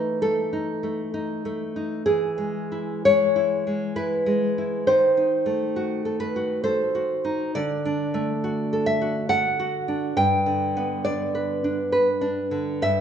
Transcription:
0.00 2.02 E3 soft
0.00 0.21 A3 soft
0.00 0.52 D#4 soft
0.00 0.18 B4 medium
0.22 0.82 A3 soft
0.22 1.09 A4 medium
0.53 1.13 D#4 soft
0.83 1.44 A3 soft
1.14 1.75 D#4 soft
1.45 2.06 A3 soft
1.76 2.05 D#4 soft
2.06 4.84 E3 soft
2.06 3.02 G#4 medium
2.38 3.04 G#3 soft
2.72 3.34 E4 soft
3.05 3.66 G#3 soft
3.05 3.93 C#5 medium
3.36 3.95 E4 soft
3.67 4.25 G#3 soft
3.96 4.57 E4 soft
3.96 4.83 B4 medium
4.26 4.87 G#3 soft
4.58 4.88 E4 soft
4.87 7.50 D#3 soft
4.87 6.16 C5 medium
5.17 6.36 D#4 soft
5.46 6.79 A3 soft
5.76 6.05 F#4 soft
6.05 6.63 A4 soft
6.20 6.63 B4 medium
6.36 6.94 F#4 soft
6.64 7.54 A4 soft
6.64 7.50 C5 medium
6.95 7.54 F#4 soft
7.25 7.54 D#4 soft
7.55 10.12 D3 soft
7.55 8.81 D5 medium
7.85 9.14 D4 soft
8.14 9.43 A3 soft
8.44 9.00 F#4 soft
8.73 9.28 A4 soft
8.86 9.27 E5 medium
9.02 9.58 F#4 soft
9.29 10.16 A4 soft
9.29 10.12 F#5 medium
9.59 10.17 F#4 soft
9.88 10.17 D4 soft
10.17 12.78 G2 soft
10.17 11.02 G5 medium
10.46 11.78 D3 soft
10.77 12.08 B3 soft
11.05 11.63 D4 soft
11.05 11.89 D5 medium
11.35 11.91 B4 soft
11.64 12.20 D4 soft
11.92 12.82 B4 soft
12.21 12.82 D4 soft
12.51 12.82 D3 soft
12.82 13.01 G2 soft
12.82 13.01 E5 medium

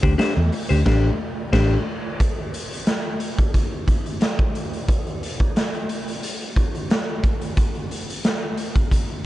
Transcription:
0.03 0.15 D2 medium
0.03 0.13 D4 medium
0.03 0.13 G4 medium
0.03 0.12 C5 medium
0.03 kick loud
0.03 closed hi-hat medium
0.18 0.32 D4 medium
0.18 0.32 G4 medium
0.18 0.33 C5 loud
0.18 snare medium
0.18 closed hi-hat medium
0.37 0.49 E2 medium
0.52 muted clean electric guitar stroke soft
0.52 open hi-hat medium
0.69 0.82 D2 medium
0.69 0.80 D4 soft
0.69 0.80 G4 medium
0.69 0.79 C5 medium
0.69 closed hi-hat medium
0.86 1.09 A1 loud
0.86 1.09 D4 loud
0.86 1.09 G4 loud
0.86 1.10 C5 medium
0.86 kick loud
0.86 snare loud
0.86 crash medium
1.53 1.76 A1 loud
1.53 1.77 D4 loud
1.53 1.77 G4 loud
1.53 1.76 C5 loud
1.53 kick medium
1.53 snare loud
1.53 crash medium
2.20 kick loud
2.20 closed hi-hat medium
2.54 closed hi-hat medium
2.72 closed hi-hat soft
2.86 snare medium
2.86 closed hi-hat medium
3.20 closed hi-hat medium
3.39 kick medium
3.39 closed hi-hat soft
3.54 kick medium
3.54 closed hi-hat medium
3.88 kick medium
3.88 closed hi-hat medium
4.06 closed hi-hat soft
4.21 snare medium
4.21 closed hi-hat medium
4.39 kick loud
4.55 closed hi-hat medium
4.73 closed hi-hat soft
4.89 kick loud
4.89 closed hi-hat medium
5.07 closed hi-hat soft
5.23 closed hi-hat medium
5.40 kick medium
5.40 closed hi-hat soft
5.56 snare medium
5.56 closed hi-hat medium
5.74 closed hi-hat soft
5.89 closed hi-hat medium
6.08 closed hi-hat soft
6.23 closed hi-hat medium
6.41 closed hi-hat soft
6.56 kick medium
6.56 closed hi-hat medium
6.75 closed hi-hat soft
6.90 snare loud
6.90 closed hi-hat medium
7.23 kick loud
7.23 closed hi-hat medium
7.41 closed hi-hat soft
7.57 kick medium
7.57 closed hi-hat medium
7.75 closed hi-hat soft
7.91 closed hi-hat medium
8.09 closed hi-hat medium
8.24 snare medium
8.24 closed hi-hat medium
8.57 closed hi-hat medium
8.76 kick medium
8.76 closed hi-hat medium
8.91 kick medium
8.91 closed hi-hat medium

